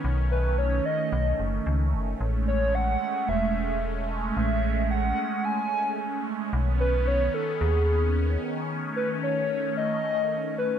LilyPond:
<<
  \new Staff \with { instrumentName = "Soft synth lead" } { \time 4/4 \key b \mixolydian \tempo 4 = 111 r8 b'8 cis''8 dis''4. r4 | r8 cis''8 fis''4 e''4. r8 | e''4 fis''4 gis''4. r8 | r8 b'8 cis''8 a'8 gis'4. r8 |
r8 b'8 cis''4 dis''4. b'8 | }
  \new Staff \with { instrumentName = "Analog synth pad" } { \time 4/4 \key b \mixolydian << { <dis cis'>1 | <gis cis'>1~ | <gis cis'>1 | <dis cis'>1~ |
<dis cis'>1 | } \\ { a1~ | a1~ | a1 | b1 |
a1 | } >> }
  \new Staff \with { instrumentName = "FM bass" } { \clef bass \time 4/4 \key b \mixolydian b,,4. r8 b,,8 fis,,8 cis,8 fis,,8 | a,,4. r8 e,,2 | a,,4. r2 r8 | b,,4. r8 dis,4. r8 |
r1 | }
>>